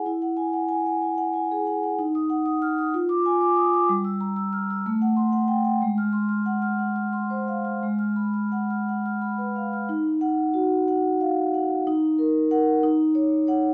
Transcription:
\new Staff \with { instrumentName = "Vibraphone" } { \time 6/8 \key e \major \tempo 4. = 62 << { r4 gis''16 r4. r16 | \key ees \dorian r4 f'''16 r4 r16 ees'''16 r16 | r4 f'''16 r4 r16 g''16 r16 | r4 ges''16 r4. r16 |
r4 ges''16 r4. r16 | r8 ges''4 r4. | r4 ges''8 r4 ges''8 | } \\ { e'16 fis''16 gis''16 fis''8 fis''16 gis''16 fis''16 gis''16 gis'16 fis''16 fis''16 | ees'16 ees'''16 ges''16 ees'''8 ees'''16 f'16 d'''16 aes''16 d'''8 d'''16 | g16 e'''16 bes''16 e'''8 e'''16 a16 fis''16 c'''16 fis''8 fis''16 | aes16 f'''16 c'''16 f'''8 f'''16 ges''16 f'''16 c'''16 c''16 f''16 f'''16 |
aes16 f'''16 ces'''16 f'''8 f'''16 ges''16 f'''16 ces'''16 ces''16 f''16 f'''16 | ees'4 ges'8 ges''8 f''8 ges''8 | ees'8 bes'8 bes'8 ees'8 des''8 des''8 | } >> }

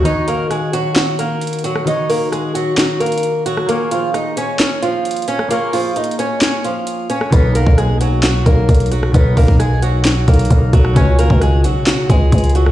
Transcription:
<<
  \new Staff \with { instrumentName = "Steel-string acoustic guitar" } { \time 4/4 \key ees \minor \tempo 4 = 132 <ees' ees''>8 <bes bes'>8 <aes aes'>8 <ges ges'>8 <ges ges'>8 <bes bes'>4 <ges ges'>8 | <ees' ees''>8 <bes bes'>8 <aes aes'>8 <ges ges'>8 <ges ges'>8 <bes bes'>4 <ges ges'>8 | <bes bes'>8 <f f'>8 <ees' ees''>8 <des' des''>8 <des' des''>8 <f f'>4 <des' des''>8 | <bes bes'>8 <f f'>8 <ees' ees''>8 <des' des''>8 <des' des''>8 <f f'>4 <des' des''>8 |
<b b'>8 <ais ais'>8 <aes aes'>8 <fis fis'>8 <fis fis'>8 <ais ais'>4 <fis fis'>8 | <b b'>8 <ais ais'>8 <aes aes'>8 <fis fis'>8 <fis fis'>8 <ais ais'>4 <fis fis'>8 | <des' des''>8 <bes bes'>8 <aes aes'>8 <ges ges'>8 <ges ges'>8 <aes aes'>4 <ges ges'>8 | }
  \new Staff \with { instrumentName = "Harp" } { \time 4/4 \key ees \minor <ees ees' ges' des''>1 | <ees ees' ges' des''>1 | <bes f' aes' des''>1 | <bes f' aes' des''>1 |
<b, ais dis' ais'>1 | <b, b dis' ais'>2. <b, b dis' ais'>4 | <des des' ges' aes'>1 | }
  \new Staff \with { instrumentName = "808-style bass" } { \clef bass \time 4/4 \key ees \minor r1 | r1 | r1 | r1 |
b,,8. b,,4.~ b,,16 b,,8 b,,4 | b,,8 b,,2 b,,8 b,,8 b,,8 | des,8. des,8. ces,16 r8. des,8 des,4 | }
  \new DrumStaff \with { instrumentName = "Drums" } \drummode { \time 4/4 hh8 hh8 <hh ss>8 hh8 <hc hh sn>8 hh8 hh32 hh32 hh32 hh32 hh16 ss16 | hh8 hho8 <hh ss>8 hh8 <hc hh sn>8 hh32 hh32 hh32 hh32 hh8 hh16 ss16 | hh8 hh8 <hh ss>8 hh8 <hc hh sn>8 hh8 hh32 hh32 hh32 hh32 hh16 ss16 | hh8 hho8 \tuplet 3/2 { hh16 hh16 hh16 hh16 r16 r16 } <hc hh sn>8 hh8 hh8 hh16 ss16 |
<hh bd>8 hh16 bd16 <hh ss>8 hh8 <hc hh sn>8 <hh bd>8 <hh bd>32 hh32 hh32 hh32 hh16 ss16 | <hh bd>8 <hho bd>16 bd16 <hh ss>8 hh8 <hc hh sn>8 <hh bd>32 hh32 hh32 hh32 <hh bd>8 <hh bd>16 ss16 | <hh bd>8 hh16 bd16 <hh ss>8 hh8 <hc hh sn>8 <hh bd>8 <hh bd>32 hh32 hh32 hh32 hh16 ss16 | }
>>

